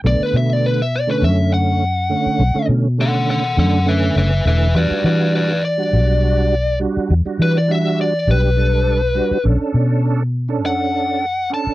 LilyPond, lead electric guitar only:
\new Staff \with { instrumentName = "Lead electric guitar" } { \time 4/4 \key b \minor \tempo 4 = 102 d''16 b'16 e''16 d''16 b'16 e''16 d''16 b'16 e''8 fis''4.~ | fis''8 r8 <a' fis''>8 <a' fis''>8 <a' fis''>8 <b' e''>8 <b' e''>8 <b' e''>8 | <b' d''>8 <b' d''>8 <b' d''>8 d''2 r8 | r8 b'16 d''16 e''8 d''8 b'2 |
r2 fis''4. a''8 | }